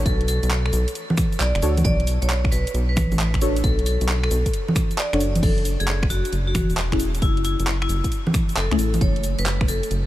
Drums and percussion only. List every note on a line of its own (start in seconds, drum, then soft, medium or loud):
0.06 kick loud
0.06 closed hi-hat medium
0.06 cabasa soft
0.21 closed hi-hat soft
0.28 open hi-hat loud
0.28 cabasa medium
0.43 closed hi-hat medium
0.43 cabasa soft
0.51 clap loud
0.51 cabasa soft
0.66 finger snap medium
0.73 open hi-hat medium
0.73 cabasa medium
0.88 closed hi-hat medium
0.88 cabasa soft
0.95 closed hi-hat medium
0.95 cabasa soft
1.10 high conga medium
1.17 finger snap medium
1.17 kick loud
1.17 open hi-hat loud
1.17 cabasa medium
1.33 closed hi-hat soft
1.33 cabasa soft
1.40 clap loud
1.40 cabasa soft
1.55 finger snap medium
1.55 closed hi-hat medium
1.62 open hi-hat loud
1.62 cabasa medium
1.78 closed hi-hat medium
1.78 high conga medium
1.78 cabasa soft
1.85 kick loud
1.85 closed hi-hat medium
1.85 cabasa soft
2.00 closed hi-hat soft
2.07 open hi-hat loud
2.07 cabasa medium
2.22 closed hi-hat medium
2.22 cabasa soft
2.30 clap loud
2.30 cabasa soft
2.44 finger snap medium
2.44 kick loud
2.52 open hi-hat loud
2.52 cabasa medium
2.67 closed hi-hat medium
2.67 cabasa soft
2.75 closed hi-hat medium
2.75 cabasa soft
2.97 finger snap medium
2.97 kick loud
2.97 open hi-hat loud
2.97 high conga medium
2.97 cabasa medium
3.12 closed hi-hat soft
3.12 high conga medium
3.12 cabasa soft
3.19 clap loud
3.19 cabasa soft
3.34 finger snap medium
3.34 kick medium
3.34 closed hi-hat medium
3.42 open hi-hat loud
3.42 cabasa medium
3.57 closed hi-hat medium
3.57 cabasa soft
3.64 kick loud
3.64 closed hi-hat medium
3.64 cabasa soft
3.79 closed hi-hat soft
3.86 open hi-hat loud
3.86 cabasa medium
4.01 closed hi-hat medium
4.01 cabasa soft
4.09 clap loud
4.09 cabasa soft
4.24 finger snap medium
4.31 open hi-hat loud
4.31 cabasa medium
4.46 kick medium
4.46 closed hi-hat medium
4.46 cabasa soft
4.54 closed hi-hat medium
4.54 cabasa soft
4.68 high conga medium
4.76 finger snap medium
4.76 kick loud
4.76 open hi-hat loud
4.76 cabasa medium
4.91 closed hi-hat soft
4.91 cabasa soft
4.98 clap loud
4.98 cabasa soft
5.13 finger snap medium
5.13 closed hi-hat medium
5.21 open hi-hat loud
5.21 cabasa medium
5.35 closed hi-hat medium
5.35 high conga medium
5.35 cabasa soft
5.43 kick loud
5.43 closed hi-hat medium
5.43 crash loud
5.43 cabasa soft
5.58 closed hi-hat soft
5.65 open hi-hat loud
5.65 cabasa medium
5.80 closed hi-hat medium
5.80 cabasa soft
5.88 clap loud
5.88 cabasa soft
6.03 finger snap medium
6.03 kick loud
6.10 open hi-hat loud
6.10 cabasa medium
6.25 closed hi-hat medium
6.25 cabasa soft
6.33 closed hi-hat medium
6.33 cabasa soft
6.55 finger snap medium
6.55 kick loud
6.55 open hi-hat loud
6.55 high conga medium
6.55 cabasa medium
6.70 closed hi-hat soft
6.70 cabasa soft
6.77 clap loud
6.77 cabasa soft
6.92 finger snap medium
6.92 kick medium
6.92 closed hi-hat medium
7.00 open hi-hat loud
7.00 cabasa medium
7.15 closed hi-hat medium
7.15 cabasa soft
7.22 kick loud
7.22 closed hi-hat medium
7.22 cabasa soft
7.37 closed hi-hat soft
7.45 open hi-hat loud
7.45 cabasa medium
7.60 closed hi-hat medium
7.60 cabasa soft
7.67 clap loud
7.67 cabasa soft
7.82 finger snap medium
7.89 open hi-hat medium
7.89 cabasa medium
8.04 kick medium
8.04 closed hi-hat medium
8.04 cabasa soft
8.12 closed hi-hat medium
8.12 cabasa soft
8.27 high conga medium
8.34 finger snap medium
8.34 kick loud
8.34 open hi-hat loud
8.34 cabasa medium
8.49 closed hi-hat soft
8.49 cabasa soft
8.57 clap loud
8.71 finger snap medium
8.71 closed hi-hat medium
8.79 open hi-hat loud
8.79 cabasa medium
8.94 closed hi-hat medium
8.94 high conga medium
8.94 cabasa soft
9.01 kick loud
9.01 closed hi-hat medium
9.01 cabasa soft
9.16 closed hi-hat soft
9.24 open hi-hat loud
9.24 cabasa medium
9.39 closed hi-hat medium
9.39 cabasa soft
9.46 clap loud
9.46 cabasa soft
9.61 finger snap medium
9.61 kick loud
9.68 open hi-hat medium
9.68 cabasa medium
9.83 closed hi-hat medium
9.83 cabasa soft
9.91 closed hi-hat medium
9.91 cabasa soft